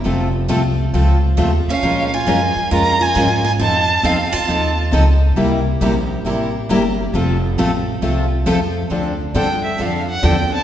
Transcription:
X:1
M:4/4
L:1/8
Q:"Swing" 1/4=136
K:Fphr
V:1 name="Violin"
z6 z f- | f a3 b a2 a | =a2 f a3 z2 | z8 |
z8 | [K:Dm] z2 g e f ^f g a |]
V:2 name="Steel-string acoustic guitar"
z6 z D- | D F3 F F2 F | F2 C F3 z2 | z8 |
z8 | [K:Dm] z8 |]
V:3 name="Steel-string acoustic guitar"
[F,=A,CF=A] z [F,A,CFA] z [F,A,CFA] z [F,A,CFA] z | [F,A,DFB] z [F,A,DFB] z [F,A,DFB] z [F,A,DFB] z | [F,CE=A] z [F,CEA] z [F,CEA] z [F,CEA] z | [C,=G,B,=E=G] z [C,G,B,EG] z [C,G,B,EG] z [C,G,B,EG] z |
[F,=A,CF=A] z [F,A,CFA] z [F,A,CFA] z [F,A,CFA] z | [K:Dm] [D,F,CDA] z [D,F,CDA] z [D,F,CDA] z [D,F,CDA] [CDA] |]
V:4 name="Steel-string acoustic guitar"
[F,=A,CF=A] z [F,A,CFA] z [F,A,CFA] z [F,A,CFA] z | [F,A,DFB] z [F,A,DFB] z [F,A,DFB] z [F,A,DFB] z | [F,CE=A] z [F,CEA] z [F,CEA] z [F,CEA] z | [C,=G,B,=E=G] z [C,G,B,EG] z [C,G,B,EG] z [C,G,B,EG] z |
[F,=A,CF=A] z [F,A,CFA] z [F,A,CFA] z [F,A,CFA] z | [K:Dm] [D,F,CDA] z [D,F,CDA] z [D,F,CDA] z [D,F,CDA] z |]
V:5 name="Upright bass" clef=bass
F,,,2 C,,2 D,,2 E,, z | B,,2 G,, z F,,2 A,,2 | F,,2 =E,, z _E,,2 D,,2 | C,,2 B,,,2 =A,,,2 =G,,,2 |
F,,,2 =A,,,2 C,,2 F,,2 | [K:Dm] D,,2 G,,2 F,,2 E,,2 |]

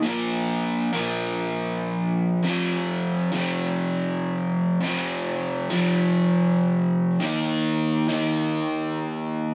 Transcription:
X:1
M:4/4
L:1/8
Q:1/4=100
K:Bb
V:1 name="Overdriven electric guitar" clef=bass
[B,,F,B,]3 [B,,F,B,]4- [B,,F,B,] | [F,,C,F,]3 [F,,C,F,]4- [F,,C,F,] | [F,,C,F,]3 [F,,C,F,]4- [F,,C,F,] | [E,B,E]3 [E,B,E]4- [E,B,E] |]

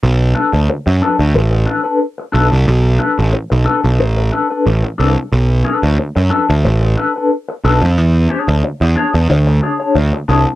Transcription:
X:1
M:4/4
L:1/16
Q:1/4=91
K:Bdor
V:1 name="Clean electric guitar"
z2 [DAB] z3 [DAB] z3 [DAB] [DAB] z2 [DAB] z | z2 [DAB] z3 [DAB] z3 [DAB] [DAB] z2 [DAB] z | z2 [DAB] z3 [DAB] z3 [DAB] [DAB] z2 [DAB] z | z2 [DGc] z3 [DGc] z3 [DGc] [DGc] z2 [DGc] z |]
V:2 name="Picked electric bass" clef=bass
B,,,2 z D,, z F,, z D,, A,,,2 z4 B,,, =C,, | B,,,2 z A,,, z B,,, z B,,, A,,,2 z2 A,,, z =C,, z | B,,,2 z D,, z F,, z D,, A,,,2 z4 B,,, ^E,, | E,,2 z D,, z E,, z E,, D,,2 z2 D,, z =C,, z |]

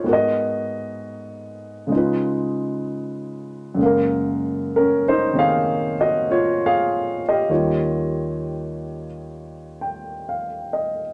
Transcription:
X:1
M:4/4
L:1/8
Q:"Swing" 1/4=65
K:Gblyd
V:1 name="Grand piano"
[Ge]4 z4 | z2 (3[DB] [Ec] [Af]- (3[Af] [Ge] [Fd] [Af] [=Ge]- | [=Ge]3 z2 =g f e |]
V:2 name="Grand piano"
[A,,A,_CGB]4 [D,A,EF_c]4 | [G,,D,A,B,Bf]3 [C,E,B,d]4- [C,E,B,d] | [E,,E,=G,Fd]8 |]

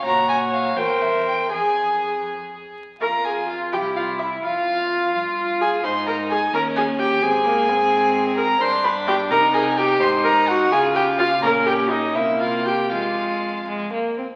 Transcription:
X:1
M:6/8
L:1/16
Q:3/8=85
K:Fm
V:1 name="Violin"
b2 a2 f2 g2 =e2 g2 | a6 z6 | b2 a2 f2 g2 f2 =e2 | f8- f2 a2 |
c'2 b2 a2 b2 a2 g2 | a8- a2 b2 | c'2 =b2 g2 _b2 a2 g2 | c'2 b2 _g2 a2 =g2 f2 |
b2 g2 e2 =e2 f2 g2 | f6 z6 |]
V:2 name="Viola"
d6 c6 | A8- A z3 | B2 A2 F2 G2 F2 =E2 | F8- F2 A2 |
c2 B2 A2 B2 A2 G2 | A8- A2 B2 | c2 =B2 G2 _B2 A2 G2 | c2 B2 _G2 A2 =G2 F2 |
B2 G2 E2 =E2 F2 G2 | F6 z6 |]
V:3 name="Violin"
_G6 B6 | A8- A2 z2 | F6 =E6 | F6 F6 |
E6 D6 | C2 B,2 C8 | =D6 E6 | E6 F6 |
D6 B,6 | A,6 A,2 B,2 C2 |]
V:4 name="Cello" clef=bass
B,,6 =E,,6 | F,,8- F,,2 z2 | F,,6 C,,6 | F,,6 G,,6 |
A,,6 E,,6 | A,,12 | G,,6 C,6 | A,,6 D,6 |
B,,6 C,6 | F,,8- F,,2 z2 |]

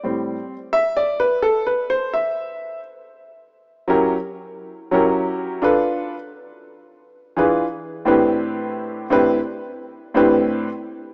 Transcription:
X:1
M:4/4
L:1/8
Q:"Swing 16ths" 1/4=86
K:Am
V:1 name="Grand piano"
[A,,G,C] z (3e d B (3A B c e2 | z3 [^F,^CEG^A] z2 [F,CEGA]2 | [DFAB] z4 [E,DF^GB] z [A,,CDE=GB]- | [A,,CDEGB]2 [A,,CDEGB] z2 [A,,CDEGB] z2 |]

